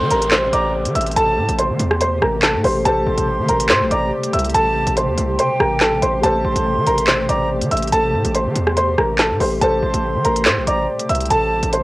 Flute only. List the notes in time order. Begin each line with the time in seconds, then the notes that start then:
Already playing: C6
0.53 A#5
1.17 A5
3.07 C6
3.91 A#5
4.54 A5
5.39 G5
6.45 C6
7.29 A#5
7.93 A5
9.83 C6
10.67 A#5
11.30 A5